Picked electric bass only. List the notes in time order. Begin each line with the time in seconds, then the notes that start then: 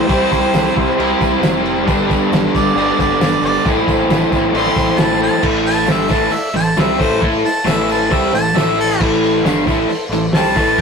0.09 C2
0.32 C2
0.53 C2
0.77 C2
0.98 C2
1.21 C2
1.42 F1
1.88 G1
2.32 G1
2.55 G1
2.75 G1
2.99 G1
3.20 G1
3.42 G1
3.65 A1
3.87 A1
4.09 A1
4.31 A1
4.53 A1
4.76 A1
4.98 A1
5.43 A1
5.86 G1
6.10 A1
6.31 muted picked electric bass stroke
6.54 A1
6.76 C2
6.99 A1
7.22 A2
7.43 muted picked electric bass stroke
7.65 A1
8.11 C2
8.33 A1
8.54 A1
9.00 A1
9.43 G1
9.67 A1
9.88 muted picked electric bass stroke
10.09 A1
10.31 C2
10.56 A1